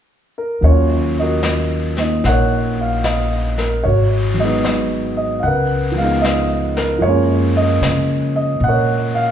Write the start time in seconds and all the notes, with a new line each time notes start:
0.38 A#4
0.61 D#2 F#3 A#3 C#4 C#5, brush sweep
0.67 F4 F#4
1.19 F#4 A#4 D#5
1.43 snare, hi-hat pedal
1.97 A#3 D#4 D#5, snare
2.24 A#1 C#5 F#5, brush sweep, snare
2.28 A#4
2.81 F5
3.04 D#5, snare, hi-hat pedal
3.58 A#4, snare
3.84 G#1 F#4 C#5, brush sweep
4.34 F#3 G#3
4.40 B3 F#4 D#5
4.44 D#4 B4
4.65 snare, hi-hat pedal
5.17 D#5
5.39 F5 F#5
5.44 C#2 A#4 B4, brush sweep
5.92 F3 G#3
5.98 B3 F5
6.03 D#4
6.21 D#5, snare, hi-hat pedal
6.77 A#4, snare
6.98 F#2 F3 G#3 C#5
7.04 A#3 F4 A#4, brush sweep
7.09 C#4
7.57 A#4 D#5
7.81 C#3, snare, hi-hat pedal
8.36 D#5
8.60 A#2 F#5, brush sweep
8.68 A#4 C#5
9.15 F5